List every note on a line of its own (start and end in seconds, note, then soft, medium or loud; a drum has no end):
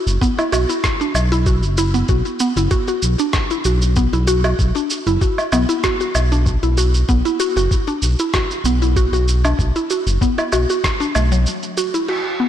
0.00 0.20 F#4 medium
0.07 0.18 F#1 medium
0.07 shaker soft
0.21 0.36 B3 loud
0.21 kick loud
0.21 shaker soft
0.39 0.51 E4 medium
0.39 low woodblock medium
0.39 shaker soft
0.52 0.66 B1 medium
0.52 0.68 F#4 loud
0.52 low woodblock medium
0.52 shaker medium
0.69 0.83 E4 medium
0.69 shaker soft
0.84 kick loud
0.84 cross-stick medium
0.84 shaker soft
1.01 1.14 D4 medium
1.01 shaker soft
1.15 1.64 B1 loud
1.15 low woodblock medium
1.15 shaker medium
1.32 1.40 E4 loud
1.32 shaker soft
1.46 1.61 F#4 medium
1.46 kick loud
1.46 shaker soft
1.62 2.04 F#1 medium
1.62 shaker soft
1.78 1.94 E4 loud
1.78 shaker medium
1.94 2.08 B3 medium
1.94 shaker soft
2.08 2.22 B1 loud
2.08 2.39 F#4 medium
2.08 kick loud
2.08 shaker soft
2.25 shaker soft
2.40 2.55 B3 loud
2.40 shaker medium
2.56 2.68 F#1 medium
2.56 2.70 E4 medium
2.56 shaker soft
2.71 2.86 F#4 loud
2.71 kick loud
2.71 shaker soft
2.88 2.96 F#4 medium
2.88 shaker soft
3.02 3.16 B1 medium
3.02 shaker medium
3.19 3.49 D4 medium
3.19 shaker soft
3.33 kick loud
3.33 cross-stick medium
3.33 shaker soft
3.50 3.64 E4 medium
3.50 shaker soft
3.65 4.08 B1 medium
3.65 3.95 F#4 medium
3.65 shaker medium
3.82 shaker soft
3.96 4.11 B3 medium
3.96 kick loud
3.96 shaker soft
4.13 4.54 B1 medium
4.13 4.26 E4 medium
4.13 shaker soft
4.27 4.43 F#4 loud
4.27 shaker medium
4.44 4.52 F#4 medium
4.44 low woodblock medium
4.44 shaker soft
4.59 4.72 B1 medium
4.59 kick loud
4.59 shaker soft
4.75 5.05 D4 medium
4.75 shaker soft
4.90 shaker medium
5.07 5.18 F#1 medium
5.07 5.21 E4 medium
5.07 shaker soft
5.21 5.51 F#4 medium
5.21 kick loud
5.21 shaker soft
5.38 low woodblock medium
5.38 shaker soft
5.52 5.66 B1 medium
5.52 5.68 B3 loud
5.52 low woodblock medium
5.52 shaker medium
5.69 5.82 E4 medium
5.69 shaker soft
5.84 5.99 F#4 loud
5.84 kick loud
5.84 cross-stick medium
5.84 shaker soft
6.01 6.09 F#4 medium
6.01 shaker soft
6.15 6.58 B1 medium
6.15 low woodblock medium
6.15 shaker medium
6.32 6.61 D4 medium
6.32 shaker soft
6.46 kick loud
6.46 shaker soft
6.63 7.04 B1 medium
6.63 6.77 E4 medium
6.63 shaker soft
6.77 7.07 F#4 medium
6.77 shaker medium
6.94 shaker soft
7.09 7.22 B1 loud
7.09 7.24 B3 loud
7.09 kick loud
7.09 shaker soft
7.25 7.38 E4 medium
7.25 shaker soft
7.40 7.55 F#4 loud
7.40 shaker medium
7.56 7.68 F#1 medium
7.56 7.65 F#4 medium
7.56 shaker soft
7.71 kick loud
7.71 shaker soft
7.88 8.17 D4 medium
7.88 shaker soft
8.02 8.16 B1 medium
8.02 shaker medium
8.19 8.33 E4 medium
8.19 shaker soft
8.34 8.64 F#4 medium
8.34 kick loud
8.34 cross-stick medium
8.34 shaker soft
8.51 shaker soft
8.64 9.07 B1 medium
8.64 8.80 B3 loud
8.64 shaker medium
8.82 8.95 E4 medium
8.82 shaker soft
8.96 9.11 F#4 loud
8.96 kick loud
8.96 shaker soft
9.12 9.54 B1 loud
9.12 9.21 F#4 medium
9.12 shaker soft
9.28 shaker medium
9.45 9.74 D4 medium
9.45 low woodblock medium
9.45 shaker soft
9.59 9.72 B1 loud
9.59 kick loud
9.59 shaker soft
9.76 9.89 E4 medium
9.76 shaker soft
9.90 10.20 F#4 medium
9.90 shaker medium
10.07 10.18 F#1 medium
10.07 shaker soft
10.21 10.37 B3 medium
10.21 kick loud
10.21 shaker soft
10.38 10.51 E4 medium
10.38 low woodblock medium
10.38 shaker soft
10.52 10.66 B1 medium
10.52 10.68 F#4 loud
10.52 low woodblock medium
10.52 shaker medium
10.70 10.78 F#4 medium
10.70 shaker soft
10.84 kick loud
10.84 cross-stick medium
10.84 shaker soft
11.00 11.13 D4 medium
11.00 shaker soft
11.15 11.46 B1 medium
11.15 11.30 A3 medium
11.15 low woodblock medium
11.15 shaker medium
11.32 11.45 F#3 medium
11.32 shaker soft
11.46 shaker soft
11.63 shaker soft
11.77 11.93 F#4 medium
11.77 shaker medium
11.94 12.07 E4 medium
11.94 shaker soft
12.08 12.38 F#4 medium
12.08 crash medium
12.40 12.49 B3 medium